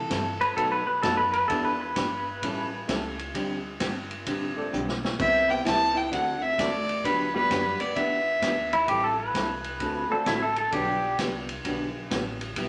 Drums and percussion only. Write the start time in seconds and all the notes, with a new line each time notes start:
0.10 kick, snare, hi-hat pedal, ride
0.41 ride
0.57 kick, ride
1.03 kick, snare, hi-hat pedal, ride
1.33 ride
1.50 kick, ride
1.96 kick, snare, hi-hat pedal, ride
2.42 kick, ride
2.89 kick, snare, hi-hat pedal, ride
3.19 ride
3.35 kick, ride
3.80 kick, snare, hi-hat pedal, ride
4.11 ride
4.26 kick, ride
4.73 hi-hat pedal
4.89 snare
5.04 snare
5.20 kick, crash
5.66 kick, snare, hi-hat pedal, ride
6.12 kick, ride
6.58 kick, snare, hi-hat pedal, ride
6.89 ride
7.04 kick, ride
7.50 kick, snare, hi-hat pedal, ride
7.80 ride
7.96 kick, ride
8.42 kick, snare, hi-hat pedal, ride
8.73 ride
8.88 kick, ride
9.34 kick, snare, hi-hat pedal, ride
9.64 ride
9.80 kick, ride
10.26 kick, snare, hi-hat pedal, ride
10.56 ride
10.72 kick, ride
11.19 kick, snare, hi-hat pedal, ride
11.49 ride
11.65 kick, ride
12.11 kick, snare, hi-hat pedal, ride
12.41 ride
12.56 kick, ride